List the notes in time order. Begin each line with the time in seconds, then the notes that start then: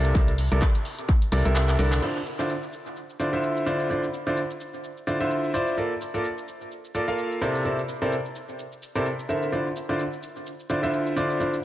Already playing: C2 C3 E4 A4 A#4 D5
0.05 closed hi-hat, shaker
0.15 C2 C3 E4 A4 A#4 D5, kick, closed hi-hat, shaker
0.28 closed hi-hat, shaker
0.38 open hi-hat, shaker
0.52 C2 C3 E4 A4 A#4 D5, closed hi-hat, shaker
0.62 kick, clap, closed hi-hat, shaker
0.75 closed hi-hat, shaker
0.85 open hi-hat, shaker
0.98 closed hi-hat, shaker
1.09 kick, closed hi-hat, shaker
1.22 closed hi-hat, shaker
1.32 C2 C3 E4 A4 A#4 D5, open hi-hat, shaker
1.45 C2 C3 E4 A4 A#4 E5, closed hi-hat, shaker
1.56 clap, closed hi-hat, shaker
1.69 clap, closed hi-hat, shaker
1.79 C2 D3 E4 A4 A#4 D5, open hi-hat, shaker
1.92 clap, closed hi-hat, shaker
2.02 D3 E4 F4 C5 D5, crash, shaker
2.26 shaker
2.39 D3 E4 F4 C5 D5, shaker
2.50 shaker
2.63 shaker
2.73 shaker
2.86 shaker
2.97 shaker
3.10 shaker
3.20 D3 E4 F4 C5 D5, shaker
3.33 D3 E4 F4 C5 E5, shaker
3.43 shaker
3.57 shaker
3.66 D3 E4 F4 C5 D5, shaker
3.80 shaker
3.90 D3 E4 F4 C5 D5, shaker
4.04 shaker
4.14 shaker
4.27 D3 E4 F4 C5 D5, shaker
4.37 shaker
4.50 shaker
4.61 shaker
4.74 shaker
4.84 shaker
4.97 shaker
5.07 D3 E4 F4 C5 D5, shaker
5.20 D3 E4 F4 C5 E5, shaker
5.31 shaker
5.44 shaker
5.54 E4 F4 C5 D5, shaker
5.68 shaker
5.77 A#3 F4 A4 A#4 D5, shaker
6.01 shaker
6.14 A#3 F4 A4 A#4 D5, shaker
6.25 shaker
6.38 shaker
6.48 shaker
6.61 shaker
6.72 shaker
6.85 shaker
6.95 A#3 F4 A4 A#4 D5, shaker
7.08 A#3 F4 A4 A#4 F5, shaker
7.18 shaker
7.32 shaker
7.41 C3 E4 A4 A#4 C5 D5, shaker
7.55 shaker
7.65 C3 E4 A4 A#4 C5 D5, shaker
7.79 shaker
7.89 shaker
8.02 C3 E4 A4 A#4 C5 D5, shaker
8.12 shaker
8.25 shaker
8.36 shaker
8.49 shaker
8.59 shaker
8.72 shaker
8.82 shaker
8.95 C3 E4 A4 A#4 C5 D5, shaker
9.06 shaker
9.19 shaker
9.29 D3 E4 A4 A#4 C5 E5, shaker
9.43 shaker
9.52 D3 E4 F4 C5 D5, shaker
9.76 shaker
9.89 D3 E4 F4 C5 D5, shaker
10.00 shaker
10.13 shaker
10.23 shaker
10.36 shaker
10.47 shaker
10.60 shaker
10.70 D3 E4 F4 C5 D5, shaker
10.83 D3 E4 F4 C5 E5, shaker
10.93 shaker
11.07 shaker
11.16 D3 E4 F4 C5 D5, shaker
11.30 shaker
11.40 D3 E4 F4 C5 D5, shaker
11.54 shaker